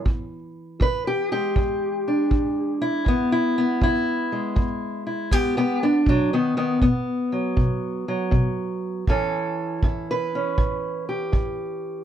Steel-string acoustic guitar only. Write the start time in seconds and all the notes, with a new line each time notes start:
Already playing: E3
0.05 E2
0.80 E2 B4
1.07 G4
1.32 G#3 G4
1.56 E2
2.08 D4
2.31 E2
2.82 E4
3.05 E2 B3
3.32 E4
3.58 B3
3.82 E2 E4
4.32 G#3
4.56 E2
5.07 E4
5.31 E2 B3 G4
5.57 B3 G4
5.83 B3 D4
6.06 B2 F#3 D4
6.33 D#3 B3
6.57 D#3 B3
6.82 B2 B3
7.32 F#3
7.57 B2
8.08 F#3
8.31 B2
9.07 A2 E3 C#4 E4 A4
9.84 A2 E4
10.11 B4
10.35 C#4
10.58 A2
11.09 G4
11.32 A2